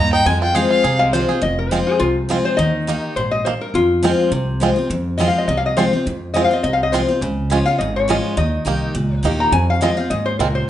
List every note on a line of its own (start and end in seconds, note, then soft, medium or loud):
0.00 0.22 D#2 medium
0.00 0.25 G2 loud
0.00 0.24 A#3 medium
0.00 0.12 D#4 medium
0.00 0.12 A#5 loud
0.13 0.27 D#4 medium
0.13 0.28 G5 loud
0.26 0.65 F2 loud
0.26 0.82 F2 loud
0.26 0.68 G#3 medium
0.26 0.41 G#5 loud
0.42 0.69 F4 medium
0.42 0.57 G5 loud
0.55 0.83 F3 medium
0.55 0.83 G#3 loud
0.55 0.84 C4 loud
0.55 0.84 F4 medium
0.55 0.83 G#4 medium
0.55 0.70 F5 medium
0.70 1.11 F4 medium
0.70 0.98 F5 loud
0.84 1.23 C2 medium
0.84 1.40 C3 medium
0.84 1.26 G#4 medium
0.99 1.40 G#3 medium
0.99 1.14 F5 loud
1.13 1.28 F3 loud
1.13 1.29 G#3 loud
1.13 1.29 C4 loud
1.13 1.42 F4 medium
1.13 1.27 F4 loud
1.13 1.40 C5 medium
1.29 1.43 C4 medium
1.29 1.42 F4 medium
1.29 1.42 G#4 medium
1.41 1.81 F1 loud
1.41 1.97 F2 loud
1.41 1.58 D#5 loud
1.59 1.71 A#4 medium
1.71 1.99 F3 medium
1.71 1.79 G#3 medium
1.71 2.00 G#3 medium
1.71 1.79 C4 medium
1.71 2.00 C4 loud
1.71 1.79 F4 medium
1.71 2.00 F4 loud
1.71 1.86 C5 medium
1.87 2.00 G#4 medium
1.99 2.39 C2 medium
1.99 2.55 C3 medium
1.99 2.15 F4 loud
2.29 2.57 F3 medium
2.29 2.57 G#3 loud
2.29 2.37 G#3 medium
2.29 2.57 C4 loud
2.29 2.37 C4 medium
2.29 2.37 F4 medium
2.29 2.58 F4 loud
2.45 2.58 C5 medium
2.57 2.97 D#2 loud
2.57 2.86 D#3 loud
2.57 3.14 D#5 loud
2.87 3.15 D#3 medium
2.87 2.95 A#3 medium
2.87 3.16 A#3 medium
2.87 2.91 D#4 medium
2.87 3.16 D#4 loud
2.87 3.16 G4 medium
3.16 3.55 A#1 medium
3.16 3.44 G#2 medium
3.16 3.31 C5 medium
3.31 3.45 D#5 medium
3.45 3.74 G2 medium
3.45 3.53 A#3 medium
3.45 3.49 D#4 medium
3.45 3.60 C5 medium
3.61 3.74 A#4 medium
3.74 4.13 F2 loud
3.74 4.30 F2 medium
3.74 4.31 F4 loud
4.03 4.31 F3 loud
4.03 4.31 G#3 medium
4.03 4.11 G#3 medium
4.03 4.32 C4 loud
4.03 4.11 C4 medium
4.03 4.32 F4 loud
4.03 4.11 F4 medium
4.32 4.70 C2 medium
4.32 4.87 C3 medium
4.60 4.76 F3 medium
4.60 4.76 G#3 loud
4.60 4.69 G#3 medium
4.60 4.77 C4 loud
4.60 4.69 C4 medium
4.60 4.75 F4 loud
4.60 4.69 F4 medium
4.76 4.91 C4 medium
4.76 4.89 F4 medium
4.90 5.29 F2 loud
4.90 5.46 F2 loud
5.18 5.47 F3 medium
5.18 5.47 G#3 loud
5.18 5.27 G#3 medium
5.18 5.47 C4 loud
5.18 5.27 C4 medium
5.18 5.48 F4 loud
5.18 5.27 F4 medium
5.18 5.28 D#5 medium
5.28 5.38 F5 medium
5.38 5.46 D#5 medium
5.48 5.86 C2 medium
5.48 6.04 C3 medium
5.48 5.57 D#5 medium
5.57 5.65 F5 loud
5.66 5.76 D#5 medium
5.77 5.92 F3 loud
5.77 5.92 G#3 medium
5.77 5.84 G#3 medium
5.77 5.84 C4 medium
5.77 5.93 C4 loud
5.77 5.85 F4 medium
5.77 5.92 F4 loud
5.77 5.92 C5 loud
5.93 6.07 C4 soft
5.93 6.06 F4 medium
6.06 6.45 F2 loud
6.06 6.62 F2 medium
6.34 6.50 F3 medium
6.34 6.50 G#3 medium
6.34 6.42 G#3 medium
6.34 6.51 C4 medium
6.34 6.43 C4 medium
6.34 6.50 F4 loud
6.34 6.43 F4 medium
6.34 6.44 D#5 medium
6.44 6.54 F5 loud
6.51 6.65 C4 medium
6.51 6.64 F4 medium
6.51 6.62 D#5 medium
6.63 7.02 C2 medium
6.63 7.19 C3 medium
6.63 6.73 D#5 medium
6.73 6.83 F5 medium
6.83 6.93 D#5 medium
6.92 7.08 F3 medium
6.92 7.00 G#3 medium
6.92 7.08 G#3 loud
6.92 7.00 C4 medium
6.92 7.09 C4 loud
6.92 7.00 F4 medium
6.92 7.07 F4 loud
6.92 7.08 C5 medium
7.08 7.23 C4 medium
7.08 7.21 F4 medium
7.21 7.60 C#2 loud
7.21 7.77 C#3 medium
7.50 7.65 F3 loud
7.50 7.58 G#3 medium
7.50 7.66 G#3 loud
7.50 7.58 C#4 medium
7.50 7.66 C#4 loud
7.50 7.58 F4 medium
7.50 7.64 F4 loud
7.66 7.80 C#4 medium
7.66 7.79 F4 medium
7.66 7.78 F5 loud
7.78 8.18 G#1 medium
7.78 8.35 G#2 medium
7.78 7.94 D#5 medium
7.96 8.09 C#5 loud
8.08 8.36 F3 medium
8.08 8.36 G#3 loud
8.08 8.16 G#3 medium
8.08 8.37 C#4 loud
8.08 8.16 C#4 medium
8.08 8.37 F4 loud
8.08 8.16 F4 medium
8.08 8.36 D#5 medium
8.37 8.56 D#2 loud
8.37 8.64 D#3 loud
8.37 9.22 D#5 loud
8.65 8.91 C2 medium
8.65 8.93 D#3 medium
8.65 8.94 A#3 loud
8.65 8.74 A#3 medium
8.65 8.94 D#4 loud
8.65 8.70 D#4 medium
8.65 8.94 G4 loud
8.95 9.19 C#2 medium
8.95 9.50 A#2 medium
9.23 9.48 D#2 medium
9.23 9.51 D#3 medium
9.23 9.52 A#3 medium
9.23 9.31 A#3 medium
9.23 9.52 D#4 loud
9.23 9.27 D#4 medium
9.23 9.52 G4 loud
9.40 9.52 A#5 loud
9.52 9.91 F2 loud
9.52 10.08 F2 loud
9.52 9.68 G#5 loud
9.70 9.82 F5 loud
9.81 9.96 F3 loud
9.81 9.97 G#3 loud
9.81 9.89 G#3 medium
9.81 9.97 C4 loud
9.81 9.89 C4 medium
9.81 9.96 F4 loud
9.81 9.89 F4 medium
9.81 9.97 D#5 loud
9.97 10.11 C4 soft
9.97 10.10 F4 medium
9.97 10.10 F5 medium
10.10 10.35 D#2 medium
10.10 10.38 G#2 medium
10.10 10.26 D#5 loud
10.26 10.39 C5 loud
10.39 10.64 C#2 medium
10.39 10.67 A#2 loud
10.39 10.47 G#3 medium
10.39 10.47 C4 medium
10.39 10.47 F4 medium
10.39 10.55 A#4 loud
10.55 10.68 C5 loud